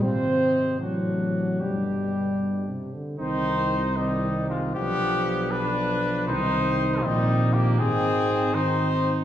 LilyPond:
<<
  \new Staff \with { instrumentName = "Cornet" } { \time 6/8 \key c \minor \tempo 4. = 78 f'8. ees'8. d'4. | d'2~ d'8 r8 | c''4. ees'4 f'8 | g'4. b'4. |
c''4. ees'4 g'8 | aes'4. c''4. | }
  \new Staff \with { instrumentName = "Trumpet" } { \time 6/8 \key c \minor c''4. fis'4. | g'2~ g'8 r8 | ees'4. g4 aes8 | b4. d'4. |
ees'4. g4 bes8 | c'4. ees'4. | }
  \new Staff \with { instrumentName = "French horn" } { \time 6/8 \key c \minor c'4. fis4. | g2~ g8 r8 | c'4. c'4. | d'4. d'4. |
c'4. c'4. | c'4. c'4. | }
  \new Staff \with { instrumentName = "Trombone" } { \clef bass \time 6/8 \key c \minor c4. c4. | b,4. b,8 c8 d8 | ees4. ees4. | f4. f4. |
ees4. ees4. | ees4. ees4. | }
  \new Staff \with { instrumentName = "Tuba" } { \clef bass \time 6/8 \key c \minor aes,,4. a,,4. | g,,2~ g,,8 r8 | c,2. | b,,2. |
c,4. bes,,4. | aes,,2. | }
>>